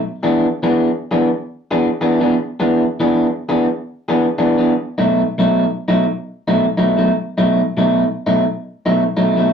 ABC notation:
X:1
M:4/4
L:1/16
Q:"Swing" 1/4=101
K:Bmix
V:1 name="Clean electric guitar"
z [E,B,=DG] z2 [E,B,DG] z2 [E,B,DG] z3 [E,B,DG] z [E,B,DG] [E,B,DG] z | z [E,B,=DG] z2 [E,B,DG] z2 [E,B,DG] z3 [E,B,DG] z [E,B,DG] [E,B,DG] z | z [B,,F,A,D] z2 [B,,F,A,D] z2 [B,,F,A,D] z3 [B,,F,A,D] z [B,,F,A,D] [B,,F,A,D] z | z [B,,F,A,D] z2 [B,,F,A,D] z2 [B,,F,A,D] z3 [B,,F,A,D] z [B,,F,A,D] [B,,F,A,D] z |]